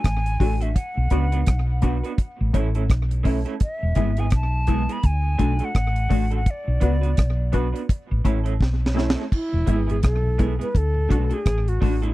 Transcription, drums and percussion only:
0.04 kick loud
0.04 cross-stick loud
0.04 closed hi-hat medium
0.26 closed hi-hat soft
0.40 kick medium
0.40 open hi-hat medium
0.61 closed hi-hat medium
0.76 kick loud
0.76 closed hi-hat medium
1.10 kick medium
1.10 closed hi-hat medium
1.32 closed hi-hat medium
1.47 kick loud
1.47 cross-stick loud
1.47 closed hi-hat loud
1.82 kick medium
1.82 closed hi-hat medium
2.04 closed hi-hat soft
2.18 kick loud
2.18 closed hi-hat medium
2.54 kick medium
2.54 closed hi-hat medium
2.75 closed hi-hat soft
2.90 kick loud
2.90 cross-stick loud
2.90 closed hi-hat medium
3.11 closed hi-hat medium
3.25 kick medium
3.25 open hi-hat medium
3.46 closed hi-hat soft
3.60 kick loud
3.60 closed hi-hat medium
3.95 kick medium
3.95 closed hi-hat medium
4.17 closed hi-hat medium
4.30 kick loud
4.30 cross-stick medium
4.30 closed hi-hat loud
4.67 kick medium
4.67 closed hi-hat medium
4.89 closed hi-hat soft
5.03 kick loud
5.03 closed hi-hat medium
5.39 kick medium
5.39 closed hi-hat medium
5.59 closed hi-hat soft
5.75 kick loud
5.75 cross-stick loud
5.75 closed hi-hat medium
5.96 closed hi-hat medium
6.11 kick medium
6.11 open hi-hat medium
6.31 closed hi-hat soft
6.46 kick loud
6.46 closed hi-hat medium
6.81 kick medium
6.81 closed hi-hat medium
7.03 closed hi-hat soft
7.17 kick loud
7.17 cross-stick loud
7.17 closed hi-hat loud
7.53 kick medium
7.53 closed hi-hat medium
7.76 closed hi-hat soft
7.89 kick loud
7.89 closed hi-hat medium
8.25 kick medium
8.25 closed hi-hat medium
8.46 closed hi-hat soft
8.61 kick loud
8.61 snare medium
8.86 snare medium
8.98 snare medium
9.10 snare medium
9.32 kick loud
9.32 crash medium
9.67 kick medium
9.67 closed hi-hat medium
9.90 closed hi-hat soft
10.03 kick loud
10.03 cross-stick loud
10.03 closed hi-hat loud
10.39 kick medium
10.39 closed hi-hat medium
10.61 closed hi-hat soft
10.75 kick loud
10.75 closed hi-hat medium
11.11 kick medium
11.11 closed hi-hat medium
11.31 closed hi-hat soft
11.46 kick loud
11.46 cross-stick loud
11.46 closed hi-hat medium
11.68 closed hi-hat medium
11.82 kick medium
11.82 open hi-hat medium
12.03 closed hi-hat soft

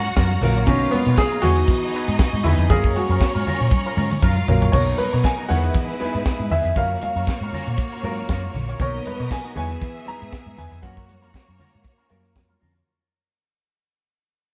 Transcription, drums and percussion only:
0.06 closed hi-hat medium
0.17 kick loud
0.17 snare loud
0.30 closed hi-hat soft
0.30 high conga medium
0.41 open hi-hat medium
0.41 muted conga soft
0.41 low conga medium
0.56 closed hi-hat medium
0.66 kick loud
0.66 closed hi-hat medium
0.66 muted conga soft
0.66 low conga medium
0.81 closed hi-hat soft
0.92 closed hi-hat medium
0.92 muted conga soft
0.92 high conga medium
1.06 closed hi-hat medium
1.18 kick loud
1.18 snare medium
1.31 closed hi-hat soft
1.42 open hi-hat medium
1.42 muted conga soft
1.42 high conga medium
1.42 low conga medium
1.57 closed hi-hat soft
1.68 kick loud
1.68 snare soft
1.68 closed hi-hat medium
1.68 muted conga soft
1.81 closed hi-hat soft
1.93 closed hi-hat medium
2.08 closed hi-hat soft
2.19 kick loud
2.19 snare loud
2.19 muted conga soft
2.34 high conga medium
2.44 open hi-hat medium
2.44 low conga medium
2.59 closed hi-hat soft
2.70 kick loud
2.70 closed hi-hat medium
2.70 low conga medium
2.84 kick loud
2.84 closed hi-hat soft
2.96 closed hi-hat medium
2.96 high conga medium
3.10 closed hi-hat medium
3.21 kick loud
3.21 snare loud
3.35 closed hi-hat soft
3.45 open hi-hat medium
3.45 high conga medium
3.45 low conga medium
3.60 closed hi-hat medium
3.71 kick loud
3.71 high tom medium
3.71 muted conga soft
3.97 mid tom medium
3.97 muted conga soft
4.12 mid tom medium
4.22 kick loud
4.22 mid tom medium
4.22 muted conga soft
4.37 high conga medium
4.48 floor tom medium
4.48 low conga medium
4.62 floor tom loud
4.73 kick loud
4.73 crash loud
4.73 muted conga soft
4.73 low conga medium
4.88 closed hi-hat soft
4.99 closed hi-hat medium
4.99 high conga medium
5.13 closed hi-hat medium
5.24 kick loud
5.24 snare loud
5.24 muted conga soft
5.48 open hi-hat medium
5.48 high conga medium
5.48 low conga medium
5.64 closed hi-hat soft
5.74 kick loud
5.74 closed hi-hat loud
5.89 closed hi-hat soft
6.00 closed hi-hat medium
6.00 high conga medium
6.15 closed hi-hat soft
6.26 kick loud
6.26 snare loud
6.26 muted conga soft
6.40 closed hi-hat soft
6.40 high conga medium
6.50 open hi-hat medium
6.50 low conga medium
6.65 closed hi-hat soft
6.76 kick loud
6.76 closed hi-hat loud
6.76 muted conga soft
6.76 low conga medium
7.02 closed hi-hat medium
7.02 muted conga soft
7.02 high conga medium
7.16 closed hi-hat medium
7.27 kick loud
7.27 snare loud
7.27 muted conga soft
7.53 open hi-hat medium
7.53 muted conga soft
7.53 high conga medium
7.53 low conga medium
7.67 closed hi-hat soft
7.78 kick loud
7.78 closed hi-hat medium
7.92 closed hi-hat soft
8.04 closed hi-hat medium
8.04 high conga medium
8.19 closed hi-hat soft
8.29 kick loud
8.29 snare loud
8.43 high conga medium
8.54 open hi-hat medium
8.54 low conga medium
8.69 closed hi-hat soft
8.80 kick loud
8.80 closed hi-hat medium
8.80 low conga medium
9.05 closed hi-hat medium
9.05 high conga medium
9.20 closed hi-hat medium
9.31 kick loud
9.31 snare loud
9.31 muted conga soft
9.46 closed hi-hat soft
9.56 open hi-hat medium
9.56 muted conga soft
9.56 high conga medium
9.56 low conga medium
9.71 closed hi-hat soft
9.82 kick loud
9.82 snare soft
9.82 closed hi-hat medium
9.96 closed hi-hat soft
10.07 closed hi-hat medium
10.07 high conga medium
10.22 closed hi-hat soft
10.33 kick loud
10.33 snare loud
10.46 closed hi-hat soft
10.46 high conga medium
10.57 open hi-hat medium
10.57 muted conga soft
10.57 low conga medium
10.72 closed hi-hat soft
10.83 kick loud
10.83 closed hi-hat medium
10.97 kick medium
10.97 closed hi-hat soft
11.09 closed hi-hat medium
11.09 high conga medium
11.23 closed hi-hat medium
11.34 kick medium
11.34 snare loud
11.48 closed hi-hat soft
11.59 open hi-hat medium
11.59 high conga medium
11.59 low conga medium
11.74 closed hi-hat soft
11.84 kick loud
11.84 snare soft
11.84 closed hi-hat medium
11.84 muted conga soft
11.98 closed hi-hat soft
12.10 closed hi-hat medium
12.10 muted conga soft
12.10 high conga medium
12.25 closed hi-hat soft
12.36 kick loud
12.36 snare loud
12.50 high conga medium
12.61 open hi-hat medium
12.61 muted conga soft
12.61 low conga medium
12.77 closed hi-hat soft

